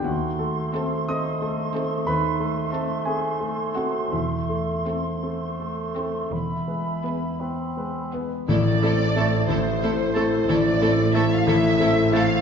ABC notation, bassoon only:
X:1
M:12/8
L:1/16
Q:3/8=59
K:Am
V:1 name="Bassoon"
A,24- | A,6 A,6 E6 C4 B,2 | z4 A, z4 z A, z4 z A, z4 z A, z |]